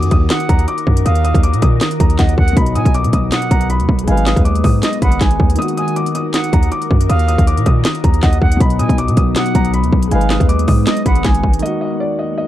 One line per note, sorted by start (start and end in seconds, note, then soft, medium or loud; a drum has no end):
0.00 0.11 F#2 loud
0.00 2.51 D#3 medium
0.00 2.54 D#3 medium
0.00 2.53 A#3 medium
0.00 2.54 D#4 medium
0.00 2.54 F#4 medium
0.00 2.55 F#4 medium
0.00 2.54 A#4 loud
0.00 closed hi-hat medium
0.11 0.29 D#2 loud
0.11 0.26 D#6 medium
0.11 kick medium
0.11 closed hi-hat medium
0.30 0.66 F#5 medium
0.30 0.45 D#6 medium
0.30 snare loud
0.30 clap loud
0.30 closed hi-hat medium
0.40 closed hi-hat medium
0.49 0.67 D#2 loud
0.49 0.64 A#5 medium
0.49 kick loud
0.49 closed hi-hat medium
0.59 closed hi-hat medium
0.68 1.03 D6 loud
0.68 closed hi-hat medium
0.78 closed hi-hat medium
0.87 1.05 F#2 loud
0.87 kick medium
0.97 closed hi-hat medium
1.06 1.33 D#2 loud
1.06 1.41 F5 loud
1.06 1.20 D#6 medium
1.06 closed hi-hat medium
1.15 closed hi-hat medium
1.24 1.39 D#6 medium
1.24 closed hi-hat medium
1.34 1.55 D#2 loud
1.34 kick loud
1.34 closed hi-hat medium
1.43 1.58 D6 medium
1.43 closed hi-hat medium
1.53 1.62 A#2 loud
1.53 closed hi-hat medium
1.62 1.80 A#2 loud
1.62 1.77 D#6 medium
1.62 kick medium
1.62 closed hi-hat medium
1.81 1.96 D#6 medium
1.81 snare loud
1.81 clap loud
1.81 closed hi-hat medium
1.91 closed hi-hat medium
2.00 2.18 D#2 loud
2.00 2.15 A#5 medium
2.00 kick loud
2.00 closed hi-hat medium
2.10 closed hi-hat medium
2.19 2.37 D#2 loud
2.19 2.37 D#5 medium
2.19 2.54 F#5 medium
2.19 kick medium
2.19 snare medium
2.19 clap medium
2.19 closed hi-hat medium
2.29 closed hi-hat medium
2.37 2.56 D#2 loud
2.37 2.56 F#5 loud
2.37 kick medium
2.48 closed hi-hat medium
2.53 2.77 B1 loud
2.53 4.03 B2 medium
2.53 4.05 F#3 medium
2.53 4.06 F#3 medium
2.53 5.56 B3 medium
2.53 10.07 D#4 medium
2.53 2.72 B5 medium
2.53 kick loud
2.53 closed hi-hat medium
2.60 4.06 D#4 medium
2.66 closed hi-hat medium
2.75 2.85 B2 loud
2.75 2.94 G#5 medium
2.75 2.90 D#6 medium
2.75 closed hi-hat medium
2.85 3.06 B1 loud
2.85 kick loud
2.85 closed hi-hat medium
2.94 3.09 D6 medium
2.94 closed hi-hat medium
3.04 3.13 B2 loud
3.04 closed hi-hat medium
3.13 3.31 B1 loud
3.13 3.28 D#6 medium
3.13 kick medium
3.13 closed hi-hat medium
3.32 3.68 F#5 loud
3.32 3.47 D#6 medium
3.32 snare loud
3.32 clap loud
3.32 closed hi-hat medium
3.42 closed hi-hat medium
3.51 3.81 B1 loud
3.51 3.66 A#5 medium
3.51 kick loud
3.51 closed hi-hat medium
3.61 closed hi-hat medium
3.70 4.05 B5 medium
3.70 closed hi-hat medium
3.80 3.88 D#2 loud
3.80 closed hi-hat medium
3.89 4.07 B1 loud
3.89 kick medium
3.99 closed hi-hat medium
4.04 4.35 G#1 loud
4.04 5.54 G#3 medium
4.04 5.57 G#3 medium
4.04 5.55 D#4 medium
4.04 4.43 F5 loud
4.04 4.22 G#5 medium
4.04 closed hi-hat medium
4.11 5.57 B4 medium
4.17 closed hi-hat medium
4.26 4.41 D#6 medium
4.26 snare loud
4.26 clap medium
4.26 closed hi-hat medium
4.36 4.63 D#2 loud
4.36 kick medium
4.36 closed hi-hat medium
4.45 4.60 D6 medium
4.45 closed hi-hat medium
4.55 closed hi-hat medium
4.64 4.82 G#2 loud
4.64 4.79 D#6 medium
4.64 kick medium
4.64 open hi-hat medium
4.83 5.01 D#5 medium
4.83 4.98 D#6 medium
4.83 snare loud
4.83 clap loud
4.83 closed hi-hat loud
4.93 closed hi-hat medium
5.02 5.20 G#1 loud
5.02 5.20 F#5 medium
5.02 5.17 B5 medium
5.02 kick loud
5.02 closed hi-hat medium
5.12 closed hi-hat medium
5.21 5.39 G#1 loud
5.21 5.56 G#5 medium
5.21 kick medium
5.21 snare medium
5.21 clap medium
5.21 closed hi-hat medium
5.31 closed hi-hat medium
5.40 5.59 D#2 loud
5.40 kick medium
5.50 closed hi-hat medium
5.55 8.55 D#3 medium
5.55 8.57 D#3 medium
5.55 8.56 A#3 medium
5.55 8.57 F#4 medium
5.55 8.57 A#4 medium
5.55 5.73 D#6 loud
5.55 closed hi-hat medium
5.62 8.58 F#4 medium
5.62 closed hi-hat medium
5.68 closed hi-hat medium
5.77 5.95 G#5 medium
5.77 5.92 D#6 medium
5.77 closed hi-hat medium
5.88 closed hi-hat medium
5.96 6.11 D6 medium
5.96 closed hi-hat medium
6.06 closed hi-hat medium
6.15 6.30 D#6 medium
6.15 closed hi-hat medium
6.34 6.69 F#5 medium
6.34 6.49 D#6 medium
6.34 snare loud
6.34 clap loud
6.34 closed hi-hat loud
6.44 closed hi-hat medium
6.53 6.71 D#2 loud
6.53 6.68 A#5 medium
6.53 kick loud
6.53 closed hi-hat medium
6.63 closed hi-hat medium
6.72 7.07 D6 medium
6.72 closed hi-hat medium
6.82 closed hi-hat medium
6.91 7.09 F#2 loud
6.91 kick medium
7.01 closed hi-hat medium
7.09 7.37 D#2 loud
7.09 7.45 F5 loud
7.09 7.24 D#6 medium
7.09 closed hi-hat medium
7.19 closed hi-hat medium
7.28 7.43 D#6 medium
7.28 closed hi-hat medium
7.38 7.59 D#2 loud
7.38 kick loud
7.38 closed hi-hat medium
7.47 7.62 D6 medium
7.47 closed hi-hat medium
7.57 7.66 A#2 loud
7.57 closed hi-hat medium
7.66 7.84 A#2 loud
7.66 7.81 D#6 medium
7.66 kick medium
7.66 closed hi-hat medium
7.85 8.00 D#6 medium
7.85 snare loud
7.85 clap loud
7.85 closed hi-hat medium
7.95 closed hi-hat medium
8.04 8.22 D#2 loud
8.04 8.19 A#5 medium
8.04 kick loud
8.04 closed hi-hat medium
8.14 closed hi-hat medium
8.23 8.41 D#2 loud
8.23 8.41 D#5 medium
8.23 8.58 F#5 medium
8.23 kick medium
8.23 snare medium
8.23 clap medium
8.23 closed hi-hat medium
8.33 closed hi-hat medium
8.41 8.60 D#2 loud
8.41 8.59 F#5 medium
8.41 kick medium
8.52 closed hi-hat medium
8.57 8.81 B1 loud
8.57 10.06 B2 medium
8.57 10.10 F#3 medium
8.57 10.08 F#3 medium
8.57 11.59 B3 medium
8.57 8.75 B5 medium
8.57 kick loud
8.57 closed hi-hat medium
8.64 10.10 D#4 medium
8.70 closed hi-hat medium
8.79 8.89 B2 loud
8.79 8.98 G#5 medium
8.79 8.94 D#6 medium
8.79 closed hi-hat medium
8.89 9.10 B1 loud
8.89 kick loud
8.89 closed hi-hat medium
8.98 9.13 D6 medium
8.98 closed hi-hat medium
9.08 9.17 B2 loud
9.08 closed hi-hat medium
9.17 9.35 B1 loud
9.17 9.32 D#6 medium
9.17 kick medium
9.17 closed hi-hat medium
9.36 9.72 F#5 loud
9.36 9.51 D#6 medium
9.36 snare loud
9.36 clap loud
9.36 closed hi-hat medium
9.46 closed hi-hat medium
9.55 9.85 B1 loud
9.55 9.70 A#5 medium
9.55 kick loud
9.55 closed hi-hat medium
9.65 closed hi-hat medium
9.74 10.09 B5 medium
9.74 closed hi-hat medium
9.84 9.92 D#2 loud
9.84 closed hi-hat medium
9.93 10.11 B1 loud
9.93 kick medium
10.03 closed hi-hat medium
10.08 10.39 G#1 loud
10.08 11.57 G#3 medium
10.08 11.61 G#3 medium
10.08 11.59 D#4 medium
10.08 11.61 D#4 medium
10.08 10.47 F5 medium
10.08 10.26 G#5 medium
10.08 closed hi-hat medium
10.15 11.61 B4 medium
10.21 closed hi-hat medium
10.30 10.45 D#6 medium
10.30 snare loud
10.30 clap medium
10.30 closed hi-hat medium
10.40 10.67 D#2 loud
10.40 kick loud
10.40 closed hi-hat medium
10.49 10.64 D6 medium
10.49 closed hi-hat medium
10.59 closed hi-hat medium
10.68 10.86 G#2 loud
10.68 10.83 D#6 medium
10.68 kick medium
10.68 open hi-hat medium
10.87 11.05 D#5 medium
10.87 11.02 D#6 medium
10.87 snare loud
10.87 clap loud
10.87 closed hi-hat loud
10.97 closed hi-hat medium
11.06 11.24 G#1 loud
11.06 11.24 F#5 medium
11.06 11.21 B5 medium
11.06 kick loud
11.06 closed hi-hat medium
11.15 closed hi-hat medium
11.24 11.43 G#1 loud
11.24 11.60 G#5 medium
11.24 kick medium
11.24 snare medium
11.24 clap medium
11.24 closed hi-hat medium
11.34 closed hi-hat medium
11.43 11.62 G#1 loud
11.43 kick medium
11.53 closed hi-hat medium
11.59 12.47 D#2 medium
11.59 12.47 D#3 medium
11.59 12.47 A#3 medium
11.59 12.47 F#4 medium
11.59 11.77 D#5 medium
11.59 closed hi-hat medium
11.66 12.47 F#4 medium
11.66 closed hi-hat medium
11.81 11.96 D#5 medium
12.00 12.15 D5 medium
12.19 12.34 D#5 medium
12.38 12.47 D#5 medium